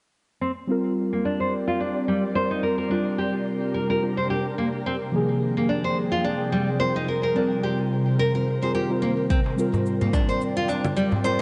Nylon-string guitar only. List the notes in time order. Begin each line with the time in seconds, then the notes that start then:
0.41 C4
1.13 A#3
1.25 D4
1.40 C5
1.68 F4
1.80 D4
2.08 G3
2.35 C5
2.51 D#4
2.63 A#4
2.78 A#4
2.91 D4
3.18 G4
3.74 A#4
3.90 A#4
4.17 C5
4.30 G4
4.58 A#3
4.86 C4
5.57 A#3
5.69 D4
5.84 C5
6.12 F4
6.24 D4
6.52 G3
6.80 C5
6.96 D#4
7.08 A#4
7.23 A#4
7.36 D4
7.63 G4
8.19 A#4
8.35 A#4
8.62 C5
8.75 G4
9.02 A#3
9.30 C4
10.01 A#3
10.13 D4
10.29 C5
10.57 F4
10.69 D4
10.97 G3
11.24 C5